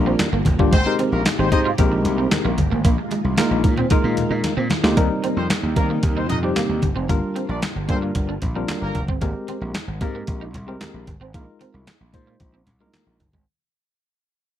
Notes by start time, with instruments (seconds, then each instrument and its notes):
Already playing: slap bass A#1, string machine D3 G3 A#3 F4, tine electric piano G3 A#3 D4 F4 A#4
0.06 clean electric guitar C4
0.19 snare, clap, closed hi-hat, high conga
0.32 slap bass G1, clean electric guitar A#3
0.45 slap bass F1, muted clean electric guitar stroke, kick, closed hi-hat, high conga
0.59 slap bass G1, tine electric piano G3 A#3 D4 F4 G4, clean electric guitar A#3, kick
0.72 slap bass G#1, string machine C3 G#3 G4, clean electric guitar G#3, horn section C4 C5, kick, closed hi-hat, muted conga
0.86 tine electric piano G#3 C4 D#4 G4 A#4, muted clean electric guitar stroke
0.99 clean electric guitar C4, closed hi-hat, muted conga
1.12 slap bass A#1, horn section A#3 A#4
1.26 clean electric guitar D#4, snare, clap, closed hi-hat, high conga
1.38 slap bass G#1, tine electric piano G#3 C4 D#4 G4 C5, horn section C4 C5, muted clean electric guitar stroke
1.52 slap bass G#2, tine electric piano G#3 C4 D#4 G4 C5, horn section D#4 D#5, kick, closed hi-hat
1.65 clean electric guitar F4
1.78 slap bass A#1, tine electric piano G#3 C4 D#4 G4 A#4, clean electric guitar D#4, kick, closed hi-hat, muted conga
1.92 muted clean electric guitar stroke
2.05 slap bass C2, closed hi-hat, muted conga
2.18 clean electric guitar C4
2.31 snare, clap, closed hi-hat, high conga
2.45 slap bass A#1, clean electric guitar A#3
2.58 slap bass G1, muted clean electric guitar stroke, kick, closed hi-hat, high conga
2.72 slap bass G#1, clean electric guitar A#3
2.85 slap bass A#1, string machine D#3 F4, clean electric guitar A#3, kick, closed hi-hat, muted conga
2.98 muted clean electric guitar stroke
3.11 clean electric guitar G#3, closed hi-hat, muted conga
3.24 slap bass C2
3.38 tine electric piano G#3 A#3 D#4 F4 A#4, clean electric guitar A#3, snare, clap, closed hi-hat, high conga
3.51 slap bass A#1, muted clean electric guitar stroke
3.64 slap bass A#2, kick, closed hi-hat
3.77 clean electric guitar C4, low conga
3.90 tine electric piano G#3 A#3 D#4 F4 A#4, clean electric guitar D#4, kick, closed hi-hat, muted conga
4.04 slap bass A#2, muted clean electric guitar stroke
4.17 closed hi-hat, muted conga, low conga
4.30 slap bass A#2, clean electric guitar D#4
4.44 snare, closed hi-hat, high conga
4.57 slap bass A#2, clean electric guitar C4
4.70 muted clean electric guitar stroke, snare, closed hi-hat, high conga
4.83 slap bass D2, tine electric piano G#3 A#3 D#4 F4 G4, clean electric guitar A#3, snare
4.96 slap bass D#2, string machine C3 G3 A#3 D#4, tine electric piano G3 C4 D#4 A#4, clean electric guitar A#3, kick, closed hi-hat, muted conga
5.24 clean electric guitar C4, closed hi-hat, muted conga
5.37 slap bass F2, horn section C4 C5, muted clean electric guitar stroke
5.50 muted clean electric guitar stroke, snare, clap, closed hi-hat, high conga
5.63 slap bass D#2
5.76 slap bass D#3, tine electric piano G3 C4 D#4 A#4, horn section A#3 A#4, clean electric guitar A#3, kick, closed hi-hat
5.90 clean electric guitar A#3
6.03 slap bass D#2, kick, closed hi-hat, muted conga
6.16 horn section C4 C5, clean electric guitar D#4
6.29 slap bass F2, horn section D#4 D#5, muted clean electric guitar stroke, closed hi-hat, muted conga, low conga
6.43 tine electric piano G3 C4 D#4 G4, clean electric guitar C4
6.56 clean electric guitar A#3, snare, clap, closed hi-hat, high conga
6.69 slap bass D#2
6.82 slap bass G1, muted clean electric guitar stroke, kick, closed hi-hat, high conga
6.96 slap bass F1, clean electric guitar C4
7.09 slap bass G1, string machine D3 F4, tine electric piano G3 D4 F4 A#4, clean electric guitar A#3, kick, closed hi-hat, muted conga
7.36 clean electric guitar C4, closed hi-hat
7.49 slap bass A#1, horn section D4 D5, muted clean electric guitar stroke
7.62 muted clean electric guitar stroke, snare, clap, closed hi-hat, high conga
7.76 slap bass G1
7.89 slap bass G2, tine electric piano G3 D4 F4 G#4, clean electric guitar A#3, horn section C4 C5, kick, closed hi-hat
7.96 tine electric piano A#4
8.02 clean electric guitar A#3
8.15 slap bass G1, kick, closed hi-hat, muted conga
8.29 clean electric guitar D4
8.42 slap bass A#1, muted clean electric guitar stroke, kick, closed hi-hat, muted conga, low conga
8.55 tine electric piano G3 D4 F4 A#4, clean electric guitar C4
8.68 clean electric guitar A#3, snare, clap, closed hi-hat, high conga
8.82 slap bass G1, horn section A#3 A#4
8.95 slap bass F1, muted clean electric guitar stroke, kick, closed hi-hat, high conga
9.08 slap bass G1, clean electric guitar C4, kick
9.21 slap bass G#1, tine electric piano G#3 C4 G4 A#4, clean electric guitar A#3, kick, closed hi-hat, muted conga
9.48 clean electric guitar C4, closed hi-hat, muted conga
9.61 slap bass A#1, muted clean electric guitar stroke
9.74 muted clean electric guitar stroke, snare, clap, closed hi-hat, high conga
9.88 slap bass G#1
10.01 slap bass G#2, tine electric piano G#3 C4 G4 A#4, clean electric guitar A#3, kick, closed hi-hat
10.15 clean electric guitar A#3
10.27 slap bass A#1, kick, closed hi-hat, muted conga
10.41 clean electric guitar D#4
10.54 slap bass C2, muted clean electric guitar stroke, closed hi-hat, muted conga, low conga
10.67 tine electric piano G#3 C4 G4 A#4, clean electric guitar C4
10.81 clean electric guitar A#3, snare, clap, closed hi-hat, high conga
10.94 slap bass A#1
11.07 slap bass G1, muted clean electric guitar stroke, kick, closed hi-hat, high conga
11.21 slap bass G#1, clean electric guitar C4
11.34 slap bass A#1, tine electric piano G#3 D#4 F4 A#4, clean electric guitar A#3, kick, closed hi-hat, muted conga
11.61 clean electric guitar C4, closed hi-hat, muted conga
11.74 slap bass C2, muted clean electric guitar stroke
11.87 muted clean electric guitar stroke, snare, clap, closed hi-hat, high conga
12.01 slap bass A#1
12.13 slap bass A#2, tine electric piano G#3 D#4 F4 C5, clean electric guitar A#3, kick, closed hi-hat
12.27 clean electric guitar A#3
12.40 slap bass A#1, kick, closed hi-hat, muted conga
12.54 clean electric guitar C4
12.67 slap bass C2, muted clean electric guitar stroke, closed hi-hat, muted conga, low conga
12.80 tine electric piano G#3 D4 F4 A#4, clean electric guitar A#3
12.87 tine electric piano D#4
12.93 clean electric guitar A#3, snare, clap, closed hi-hat, high conga
13.07 slap bass A#1
13.20 slap bass G1, muted clean electric guitar stroke, kick, closed hi-hat, high conga
13.33 slap bass G#1, clean electric guitar G#3, kick